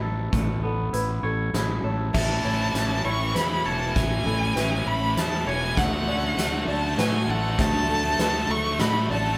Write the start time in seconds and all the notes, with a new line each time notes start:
Already playing: A1 A3 B3 E4 B4 C#5
0.02 A4
0.32 A1 A3, kick, closed hi-hat
0.63 B3 A4
0.93 A1 E4 B4, closed hi-hat
1.23 A1 A4 C#5
1.53 A1 E4, snare, closed hi-hat
1.83 A1 A4 C#5
2.14 A1 A2 E3 A3 E5 A5, kick, snare, crash
2.22 A2 E3
2.29 A2 E3
2.37 A2 E3
2.44 A1 A2 E3 E4 C#5
2.53 A2 E3
2.61 A2 E3
2.68 A2 E3
2.74 A1 A2 E3 C#4, snare, closed hi-hat
2.84 A2 E3
2.92 A2 E3
3.00 A2 E3
3.04 A1 A2 E3 E4 C#5 C#6
3.16 A2 E3
3.23 A2 E3
3.31 E2 A2 E3 B4 B5
3.36 A2, snare, closed hi-hat
3.40 E3
3.46 A2 E3
3.55 A2 E3
3.63 E1 A2 E3 C#5 A5
3.70 A2 E3
3.78 A2 E3
3.86 A2 E3
3.95 A1 A2 E3 A3 G#5, kick, snare, closed hi-hat
4.02 A2 E3
4.09 A2 E3
4.18 A2 E3
4.25 A1 A2 E3 E4 A4
4.33 A2 E3
4.40 A2 E3
4.48 A2 E3
4.56 A1 A2 E3 C#4 B4, snare, closed hi-hat
4.63 A2 E3
4.71 A2 E3
4.77 A2 E3
4.86 A1 A2 E3 E4 B5
4.94 A2 E3
5.01 A2 E3
5.09 A2 E3
5.16 E2 A2 E3 A5, snare, closed hi-hat
5.24 A2 E3
5.31 A2 E3
5.39 A2 E3
5.46 E1 A2 E3 C#5 G#5
5.55 A2 E3
5.62 A2 E3
5.68 A2 E3
5.77 D2 D3 A3 F#5, kick, snare, closed hi-hat
5.85 D3 A3
5.92 D3 A3
6.01 D3 A3
6.06 D2 D3 A3 C#4 D5
6.16 D3 A3
6.24 D3 A3
6.31 D3 A3
6.37 D2 D3 A3, snare, closed hi-hat
6.41 A3
6.47 D3 A3
6.55 D3 A3
6.64 D2 D3 A3
6.68 D3 A3 D5 A5
6.78 D3 A3
6.87 D3 A3
6.95 A2 D3 A3 F#4 B4 G#5, snare, closed hi-hat
7.02 D3 A3
7.11 D3 A3
7.18 D3 A3
7.26 A1 D3 A3 A4
7.31 D3 A3 F#5
7.42 D3 A3
7.50 D3 A3
7.58 D2 D3 A3 A5, kick, snare, closed hi-hat
7.67 D3 A3
7.73 D3 A3
7.81 D3 A3
7.88 D2 D3 A3 A4
7.96 D3 A3
8.04 D3 A3
8.10 D3 A3
8.19 D2 D3 A3 B4, snare, closed hi-hat
8.27 D3 A3
8.35 D3 A3
8.41 D3 A3
8.49 D2 D3 A3 A4 C#6
8.57 D3 A3
8.65 D3 A3
8.71 D3 A3
8.79 A2 D3 A3 F#4 B5, snare, closed hi-hat
8.87 D3 A3
8.94 D3 A3
9.02 D3 A3
9.09 A1 D3 A3 A4 D5 A5
9.17 D3 A3
9.25 D3 A3
9.33 D3 A3